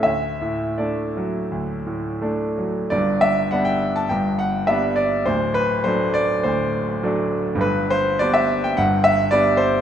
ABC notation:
X:1
M:4/4
L:1/16
Q:1/4=102
K:D
V:1 name="Grand piano"
e4 d8 z4 | [K:G] d2 e2 f g2 a g2 f2 e2 d2 | c2 B2 c2 d2 c6 z2 | B2 c2 d e2 g f2 e2 d2 c2 |]
V:2 name="Grand piano" clef=bass
D,,2 A,,2 [A,D]2 F,2 D,,2 A,,2 [A,D]2 F,2 | [K:G] [G,,,G,,]4 [G,B,D]4 [G,,,G,,]4 [G,B,D]4 | [D,,,D,,]4 [F,A,D]4 [D,,,D,,]4 [F,A,D]4 | [G,,,G,,]4 [G,B,D]4 [G,,,G,,]4 [G,B,D]4 |]